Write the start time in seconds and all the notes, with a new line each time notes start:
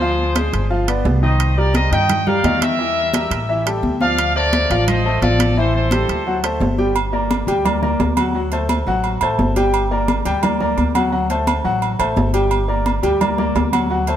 Already playing: D2 G#4 C5
0.01 F3 F4 F5, high conga
0.18 high conga
0.35 G#3 G#4 C5, high conga, high timbale
0.53 G1, high timbale
0.70 F3 F4 F5, high conga
0.88 B3 B4 D5, high conga, high timbale
1.05 C2, high conga, low timbale
1.23 D#3 D#4 C5 D#5
1.40 high conga, high timbale
1.57 G3 G4 A#4 D5, high conga
1.74 G3 G4 A#4 C5 D#5, high conga, high timbale
1.92 G2 D#3 D#4 D#5 G5, high conga, high timbale
2.09 high conga, low conga, high timbale
2.27 G3 G4 A#4 D5 F5, high conga, low conga
2.44 E2 D#3 D#4 D#5, high conga, high timbale, low timbale
2.62 A#4 E5, high conga, high timbale
2.79 E3 E4 E5, high conga
2.96 high conga
3.13 G3 G4 A#4, high conga, high timbale
3.31 A1, high timbale
3.49 E3 E4 E5, high conga
3.66 G3 G4 A4, high conga, high timbale
3.83 D2, high conga
4.01 F3 F4 D5 F5, high conga
4.18 high conga, high timbale
4.35 A3 A4 A#4 C5 D5, high conga
4.53 A3 A4 C5, high conga, high timbale
4.70 A1 F3 F4 F5, high conga, high timbale
4.88 C5 D#5, high conga, low conga, high timbale
5.05 A3 A4 C5, high conga
5.22 A1 F3 F4 A4 D5 F5, high conga, high timbale
5.39 high conga, high timbale
5.57 E3 E4 A4 C5 E5, high conga
5.74 A4 C5, high conga
5.91 G3 G4 A4, high conga, high timbale
6.08 D2, high timbale
6.26 F#3 F#4 F#5, high conga
6.44 A3 A4 C5, high conga, high timbale
6.60 G1, high conga, low timbale
6.78 G3 G4 G5, high conga
6.96 high conga, low agogo
7.13 A#3 A#4 D5, high conga
7.31 high conga, low agogo
7.47 D2 G3 G4 G5, high conga, low agogo
7.65 A#3 A#4 D5, high conga, low conga, low agogo
7.82 A#3 A#4 D5, high conga, low conga
8.00 D2, high conga, low timbale, low agogo
8.17 F#3 F#4 F#5, high conga, low agogo
8.35 F#3 F#4 F#5, high conga
8.52 A3 A4 C5, high conga, low agogo
8.69 high conga, low agogo
8.87 A1 F#3 F#4 F#5
9.04 high conga, low agogo
9.21 A1 A3 A4 C5, high conga, low agogo
9.39 G1, high conga, low timbale
9.56 G3 G4 G5, high conga, low agogo
9.74 low agogo
9.91 A#3 A#4 D5, high conga
10.08 high conga, low agogo
10.25 D2 G3 G4 G5, high conga, low agogo
10.43 A#3 A#4 D5, high conga, low conga, low agogo
10.60 A#3 A#4 D5, high conga, low conga
10.78 D2, high conga, low agogo
10.95 F#3 F#4 F#5, high conga, low agogo
11.12 F#3 F#4 F#5, high conga
11.30 A3 A4 C5, high conga, low agogo
11.47 high conga, low agogo
11.64 A1 F#3 F#4 F#5
11.82 high conga, low agogo
11.99 A1 A3 A4 C5, high conga, low agogo
12.16 G1, high conga, low timbale
12.34 G3 G4 G5, low agogo
12.51 high conga, low agogo
12.68 A#3 A#4 D5, high conga
12.86 high conga, low agogo
13.03 D2 G3 G4 G5, high conga, low agogo
13.21 A#3 A#4 D5, high conga, low conga, low agogo
13.38 A#3 A#4 D5, high conga, low conga
13.55 D2, high conga, low timbale, low agogo
13.72 F#3 F#4 F#5, high conga, low agogo
13.90 F#3 F#4 F#5, high conga
14.07 A3 A4 C5, high conga, low agogo